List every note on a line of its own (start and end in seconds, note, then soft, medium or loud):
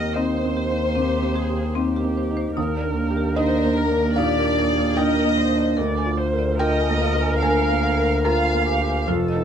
0.00 0.93 D#2 medium
0.00 2.56 D#2 medium
0.00 0.18 D#4 soft
0.00 0.34 G4 medium
0.00 0.18 A#4 medium
0.00 0.16 D#5 medium
0.00 0.13 G5 medium
0.16 0.28 C4 medium
0.16 0.60 D#4 medium
0.16 0.95 C5 medium
0.16 2.17 C5 medium
0.16 2.12 D#5 medium
0.37 0.49 C5 medium
0.45 0.86 C4 medium
0.57 0.69 G4 medium
0.71 1.13 D#4 medium
0.76 0.88 C5 medium
0.95 2.53 D#2 medium
0.95 1.08 C4 medium
0.95 1.36 G4 medium
1.16 1.28 G4 medium
1.22 1.66 C4 medium
1.35 1.48 G4 medium
1.35 1.76 G#4 medium
1.50 1.93 G4 medium
1.75 1.88 C4 medium
1.75 2.20 D#4 medium
1.75 2.54 G4 medium
1.96 2.09 G4 medium
2.04 2.47 C4 medium
2.17 2.29 C5 medium
2.31 2.57 D#4 medium
2.37 2.49 C5 medium
2.55 5.79 D#2 medium
2.55 4.15 D#2 medium
2.55 2.69 D#4 medium
2.55 3.37 A#4 medium
2.77 2.89 D5 medium
2.84 3.27 D4 medium
3.11 3.54 G4 medium
3.17 3.29 G4 medium
3.35 3.81 D3 medium
3.35 3.49 D#4 medium
3.35 4.14 A#4 medium
3.35 3.78 C5 medium
3.35 4.14 D#5 loud
3.57 3.70 D5 medium
3.65 4.08 A#3 medium
3.76 4.19 A#4 medium
3.76 3.90 A#4 medium
3.92 4.35 D4 medium
3.98 4.10 D5 medium
4.16 4.61 A#2 medium
4.16 4.30 D#4 medium
4.16 4.59 G4 medium
4.16 4.98 D5 medium
4.16 4.93 F5 medium
4.39 4.51 A#4 medium
4.46 4.88 D4 medium
4.58 4.98 G#4 medium
4.58 4.70 A#4 medium
4.71 5.14 G4 medium
4.97 5.41 D3 medium
4.97 5.10 D#4 medium
4.97 5.39 A#4 medium
4.97 5.78 D#5 medium
4.97 5.73 G5 medium
5.19 5.31 A#4 medium
5.25 5.68 A#3 medium
5.37 5.79 C5 medium
5.37 5.50 D5 medium
5.52 5.79 D4 medium
5.58 5.70 D5 medium
5.77 9.10 D2 medium
5.77 7.39 D2 medium
5.77 5.89 A#4 medium
5.77 6.19 D5 medium
5.98 6.10 G#5 medium
6.06 6.49 F4 medium
6.17 6.57 C5 medium
6.33 6.77 A#4 medium
6.39 6.51 D5 medium
6.58 7.04 F4 medium
6.58 8.26 A#4 loud
6.58 6.73 A#4 medium
6.58 7.38 D#5 medium
6.58 7.38 G5 loud
6.81 6.93 G#5 medium
6.88 7.32 A#3 medium
7.01 7.14 F5 medium
7.14 7.59 F4 medium
7.22 7.34 G#5 medium
7.42 9.04 D2 medium
7.42 7.55 A#4 medium
7.42 8.24 F5 medium
7.42 8.21 G#5 medium
7.63 7.76 F5 medium
7.70 8.14 A#3 medium
7.83 7.96 F5 medium
7.98 8.42 A#4 medium
8.25 8.67 F4 medium
8.25 8.70 F4 medium
8.25 8.38 A#4 loud
8.25 9.06 F5 medium
8.25 9.04 A#5 medium
8.46 8.59 F5 medium
8.53 8.97 A#3 medium
8.66 9.09 G4 medium
8.66 8.80 G#5 medium
8.80 9.08 F4 medium
8.88 9.01 G#5 medium
9.07 9.44 F1 medium
9.07 9.44 F2 medium
9.07 9.20 F4 loud
9.07 9.44 A4 medium
9.28 9.41 D#5 medium
9.36 9.44 D#4 medium